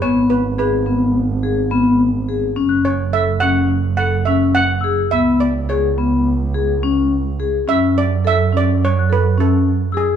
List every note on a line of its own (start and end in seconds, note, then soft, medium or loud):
0.01 2.59 G#1 medium
0.01 0.31 B3 medium
0.01 0.31 C#5 medium
0.30 0.58 B4 medium
0.58 0.73 G#4 medium
0.58 1.40 B4 medium
0.86 1.15 B3 medium
1.43 1.58 G#4 medium
1.71 2.00 B3 medium
2.28 2.43 G#4 medium
2.56 5.13 F#1 medium
2.56 2.86 C#4 medium
2.69 4.38 F#6 medium
2.85 3.15 C#5 medium
3.13 3.28 A4 medium
3.13 3.40 E5 medium
3.40 3.71 C#4 medium
3.40 3.96 F#5 medium
3.97 4.13 A4 medium
3.97 4.25 F#5 medium
4.25 4.56 C#4 medium
4.25 4.56 E5 medium
4.55 5.14 F#5 medium
4.81 4.99 G#4 medium
4.81 5.38 E6 medium
5.11 7.69 C#2 medium
5.11 5.42 B3 medium
5.11 5.41 E5 medium
5.40 5.70 D5 medium
5.69 5.84 G#4 medium
5.69 6.30 C#5 medium
5.98 6.27 B3 medium
6.54 6.69 G#4 medium
6.83 7.12 C#4 medium
7.40 7.54 G#4 medium
7.68 10.16 F#2 medium
7.68 7.97 C#4 medium
7.68 7.98 E5 medium
7.98 8.24 D5 medium
8.25 8.39 A4 medium
8.25 8.56 E5 medium
8.53 8.82 C#4 medium
8.57 8.82 D5 medium
8.85 9.13 C#5 medium
8.99 10.16 F#6 soft
9.10 9.24 A4 medium
9.10 9.38 B4 medium
9.38 9.67 C#4 medium
9.38 9.98 A4 medium
9.92 10.09 G#4 medium
9.92 10.16 E6 soft
9.97 10.16 G#4 medium